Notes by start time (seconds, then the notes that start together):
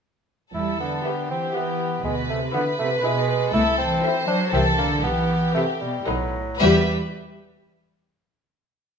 0.54 E2 G3 E4 A4
0.80 D3 B3
1.05 G4 B4 E5
1.30 E3 C4
1.54 E3 B3 G4 B4 E5
2.04 D2 B2 G#3 B4
2.29 C3 A3
2.54 D3 B3 E4 B4 E5
2.78 C3 A3
3.02 B2 G#3 E4 B4 E5
3.53 C2 A3 E4 A4
3.78 E3 C4
4.02 E4 A4 C5 E5
4.27 F#3 D4
4.53 C2 E3 C4 G4 A4 A#4 E5
4.78 D3 A#3
5.03 B1 E3 B3 G4
5.54 C3 A3 G4 B4 E5
5.80 B2 G3
6.05 B1 A2 F#3 D#4 A4 B4 D#5
6.59 E2 G3 G4 B4 E5